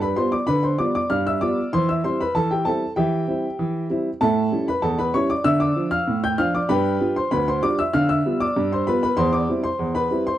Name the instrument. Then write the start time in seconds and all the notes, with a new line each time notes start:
upright piano
Already playing: G2
0.02 B4 B5
0.16 G3 B3 F4 C5 C6
0.32 D5 D6
0.47 D3 B4 B5
0.63 C5 C6
0.79 G3 B3 F4 D5 D6
0.95 D5 D6
1.10 G2 F5 F6
1.27 E5 E6
1.41 G3 B3 F4 D5 D6
1.73 E3 C5 C6
1.89 E5 E6
2.04 G3 C4 E4 C5 C6
2.21 B4 B5
2.35 E3 A4 A5
2.51 G4 G5
2.65 G3 C4 E4 A4 A5
2.96 E3 G4 E5 G5
3.28 G3 C4 E4
3.59 E3
3.90 G3 C4 E4
4.21 A2 A4 E5 A5
4.52 G3 C#4 E4
4.68 B4 B5
4.82 E2 A4 A5
4.99 B4 B5
5.14 G3 C#4 E4 C#5 C#6
5.30 D5 D6
5.44 D3 E5 E6
5.60 D5 D6
5.76 F3 D4 F4
5.91 F5 F6
6.08 A2
6.24 G5 G6
6.38 F3 D4 F4 F5 F6
6.55 D5 D6
6.69 G2 B4 G5 B5
7.01 G3 D4 F4
7.16 C5 C6
7.31 D2 B4 B5
7.48 C5 C6
7.63 G3 D4 F4 D5 D6
7.79 E5 E6
7.93 D3 F5 F6
8.09 E5 E6
8.26 G3 B3 F4
8.40 D5 D6
8.56 G2
8.72 C5 C6
8.87 G3 B3 F4 B4 B5
9.03 B4 B5
9.17 E2 C5 C6
9.33 D5 D6
9.49 G3 C4 E4
9.63 C5 C6
9.79 E2
9.95 B4 B5
10.11 G3 C4 E4
10.27 C5 C6